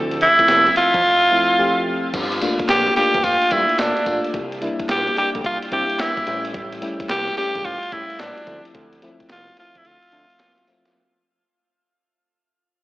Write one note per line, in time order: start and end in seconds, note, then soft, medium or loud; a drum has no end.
0.00 0.29 D2 loud
0.00 0.21 F3 medium
0.00 0.21 A3 medium
0.00 0.21 C4 medium
0.00 0.22 E4 medium
0.11 closed hi-hat soft
0.21 0.73 E4 loud
0.21 closed hi-hat medium
0.39 1.00 F3 medium
0.39 1.01 A3 medium
0.39 1.01 C4 medium
0.39 1.01 E4 medium
0.39 kick medium
0.39 closed hi-hat medium
0.48 0.70 C2 medium
0.48 snare loud
0.48 clap medium
0.48 closed hi-hat medium
0.67 closed hi-hat soft
0.76 1.83 F4 loud
0.76 closed hi-hat medium
0.94 1.02 F2 medium
0.94 kick loud
0.94 closed hi-hat soft
1.31 1.50 F3 medium
1.31 1.50 A3 medium
1.31 1.50 C4 medium
1.31 1.50 E4 medium
1.58 1.95 F3 medium
1.58 1.96 A3 medium
1.58 1.96 C4 medium
1.58 1.96 G4 medium
2.14 2.49 G1 loud
2.14 kick loud
2.14 closed hi-hat medium
2.14 crash loud
2.14 tambourine medium
2.32 closed hi-hat medium
2.41 2.78 A3 medium
2.41 2.78 A#3 medium
2.41 2.79 D4 medium
2.41 2.79 F4 loud
2.41 closed hi-hat medium
2.41 tambourine medium
2.59 kick medium
2.59 closed hi-hat medium
2.69 2.90 A#1 loud
2.69 2.95 G4 loud
2.69 snare loud
2.69 clap medium
2.69 closed hi-hat medium
2.69 tambourine medium
2.87 closed hi-hat soft
2.96 3.33 A3 medium
2.96 3.33 A#3 medium
2.96 3.34 D4 medium
2.96 3.34 F4 medium
2.96 3.25 G4 loud
2.96 open hi-hat medium
3.14 3.22 G1 medium
3.14 kick loud
3.14 closed hi-hat medium
3.24 3.38 G1 medium
3.24 3.53 F4 loud
3.24 kick medium
3.24 closed hi-hat medium
3.24 tambourine medium
3.42 closed hi-hat medium
3.51 3.66 G2 loud
3.51 3.88 A3 medium
3.51 3.88 A#3 medium
3.51 3.89 D4 medium
3.51 3.81 E4 medium
3.51 3.89 F4 medium
3.51 kick loud
3.51 closed hi-hat medium
3.51 tambourine medium
3.69 closed hi-hat soft
3.78 3.93 G1 medium
3.78 4.25 D4 medium
3.78 snare loud
3.78 clap medium
3.78 closed hi-hat medium
3.78 tambourine medium
3.97 closed hi-hat medium
4.06 4.21 A#1 medium
4.06 4.34 A3 medium
4.06 4.34 A#3 medium
4.06 4.34 D4 medium
4.06 4.35 F4 medium
4.06 kick loud
4.06 closed hi-hat medium
4.06 tambourine medium
4.24 closed hi-hat medium
4.34 4.69 C2 loud
4.34 kick loud
4.34 closed hi-hat medium
4.52 closed hi-hat soft
4.61 4.98 G3 medium
4.61 4.98 A#3 medium
4.61 4.99 D4 medium
4.61 4.99 E4 loud
4.61 closed hi-hat medium
4.79 kick loud
4.79 closed hi-hat medium
4.89 5.11 A#1 medium
4.89 5.16 G4 loud
4.89 snare loud
4.89 clap medium
4.89 closed hi-hat medium
5.07 closed hi-hat soft
5.16 5.53 G3 medium
5.16 5.53 A#3 medium
5.16 5.54 D4 medium
5.16 5.54 G4 medium
5.16 5.30 G4 medium
5.16 open hi-hat medium
5.35 5.42 D2 loud
5.35 kick loud
5.35 closed hi-hat medium
5.44 5.58 C2 loud
5.44 5.58 F4 loud
5.44 kick loud
5.44 closed hi-hat medium
5.62 closed hi-hat medium
5.71 5.86 C3 loud
5.71 6.08 G3 medium
5.71 6.08 A#3 medium
5.71 6.09 D4 medium
5.71 6.09 E4 medium
5.71 6.02 G4 loud
5.71 kick loud
5.71 closed hi-hat medium
5.90 closed hi-hat medium
5.99 6.45 E4 medium
5.99 snare loud
5.99 clap medium
5.99 closed hi-hat medium
6.17 kick medium
6.17 closed hi-hat medium
6.27 6.83 A1 loud
6.27 6.74 G3 medium
6.27 6.74 A3 medium
6.27 6.74 C#4 medium
6.27 6.75 E4 medium
6.27 closed hi-hat medium
6.45 closed hi-hat medium
6.54 kick loud
6.54 closed hi-hat medium
6.72 closed hi-hat medium
6.82 7.18 G3 medium
6.82 7.19 A3 medium
6.82 7.19 C#4 medium
6.82 7.19 E4 medium
6.82 closed hi-hat medium
7.00 kick medium
7.00 closed hi-hat medium
7.09 7.31 C2 medium
7.09 7.36 G4 loud
7.09 snare loud
7.09 clap medium
7.09 closed hi-hat medium
7.28 closed hi-hat soft
7.37 7.74 G3 medium
7.37 7.74 A3 medium
7.37 7.74 C#4 medium
7.37 7.67 G4 loud
7.37 7.74 G4 medium
7.37 open hi-hat medium
7.55 7.63 C#2 medium
7.55 kick medium
7.55 closed hi-hat soft
7.65 7.79 A1 loud
7.65 7.94 F4 loud
7.65 kick medium
7.65 closed hi-hat medium
7.83 closed hi-hat medium
7.92 8.06 A2 loud
7.92 8.29 G3 medium
7.92 8.29 A3 medium
7.92 8.29 C#4 medium
7.92 8.22 E4 medium
7.92 8.29 E4 loud
7.92 kick loud
7.92 closed hi-hat medium
8.10 closed hi-hat soft
8.19 8.34 A1 medium
8.19 8.65 D4 medium
8.19 snare loud
8.19 clap loud
8.19 closed hi-hat medium
8.38 closed hi-hat medium
8.47 8.61 D2 loud
8.47 8.94 F3 medium
8.47 8.95 A3 medium
8.47 8.95 C4 medium
8.47 8.95 E4 medium
8.47 kick medium
8.47 closed hi-hat medium
8.65 closed hi-hat medium
8.75 9.10 D2 loud
8.75 kick loud
8.75 closed hi-hat medium
8.93 closed hi-hat medium
9.02 9.39 F3 loud
9.02 9.39 A3 medium
9.02 9.39 C4 medium
9.02 9.39 E4 loud
9.02 closed hi-hat medium
9.20 kick medium
9.20 closed hi-hat medium
9.29 9.51 C2 loud
9.29 9.56 F4 loud
9.29 snare loud
9.29 clap medium
9.29 closed hi-hat medium
9.48 closed hi-hat soft
9.57 9.94 F3 medium
9.57 9.94 A3 medium
9.57 9.94 C4 medium
9.57 9.94 E4 medium
9.57 9.79 F4 loud
9.57 closed hi-hat medium
9.75 9.83 F2 medium
9.75 9.88 E4 medium
9.75 kick loud
9.75 closed hi-hat medium
9.85 9.99 D2 loud
9.85 10.68 F4 loud
9.85 closed hi-hat medium
10.03 closed hi-hat medium
10.12 10.26 D3 loud
10.12 10.49 F3 medium
10.12 10.49 A3 medium
10.12 10.49 C4 medium
10.12 10.50 E5 medium
10.12 closed hi-hat medium
10.30 closed hi-hat medium
10.39 snare loud
10.39 clap loud
10.39 closed hi-hat medium
10.58 closed hi-hat medium
10.67 10.95 F3 medium
10.67 10.95 A3 medium
10.67 10.95 C4 medium
10.67 10.95 F4 loud
10.67 open hi-hat medium
10.85 snare medium
10.85 closed hi-hat medium